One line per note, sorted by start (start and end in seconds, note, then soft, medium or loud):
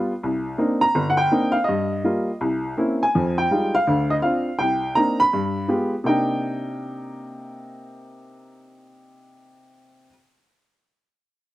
0.00 0.11 G3 medium
0.00 0.12 B3 medium
0.00 0.12 F4 medium
0.23 0.54 C2 medium
0.58 0.83 A#3 medium
0.58 0.83 C4 soft
0.58 0.83 D4 soft
0.58 0.84 D#4 medium
0.81 1.07 A#5 loud
0.95 1.26 G1 medium
1.10 1.19 F#5 medium
1.17 1.55 G5 medium
1.32 1.56 A#3 medium
1.32 1.56 C4 medium
1.32 1.56 D4 soft
1.32 1.57 D#4 medium
1.52 1.66 F5 medium
1.64 2.35 D#5 medium
1.69 2.00 G2 medium
2.04 2.29 G3 medium
2.04 2.29 A#3 soft
2.04 2.29 F4 medium
2.41 2.72 C2 medium
2.77 3.02 A#3 medium
2.77 3.02 C4 soft
2.77 3.02 C#4 medium
2.77 3.02 E4 medium
3.03 3.35 G#5 medium
3.15 3.46 F2 medium
3.15 3.46 F3 medium
3.38 3.75 G5 medium
3.51 3.75 G3 medium
3.51 3.75 G#3 soft
3.51 3.75 D#4 soft
3.51 3.76 F4 medium
3.75 4.11 F5 loud
3.87 4.18 D2 medium
3.87 4.18 D3 medium
4.10 4.15 D#5 medium
4.22 4.48 C4 medium
4.22 4.48 D4 soft
4.22 4.48 F4 medium
4.22 4.60 F5 medium
4.59 4.91 C2 medium
4.59 4.96 G5 medium
4.95 5.21 A#3 medium
4.95 5.21 C4 soft
4.95 5.21 D4 soft
4.95 5.21 D#4 medium
4.95 5.20 A#5 loud
5.20 5.88 B5 loud
5.33 5.64 G2 medium
5.68 5.93 G#3 medium
5.68 5.93 B3 soft
5.68 5.93 F4 soft
5.68 5.94 G4 medium
6.04 10.07 C3 medium
6.04 10.08 A#3 soft
6.04 10.09 D4 medium
6.04 10.10 D#4 medium
6.04 10.06 G5 medium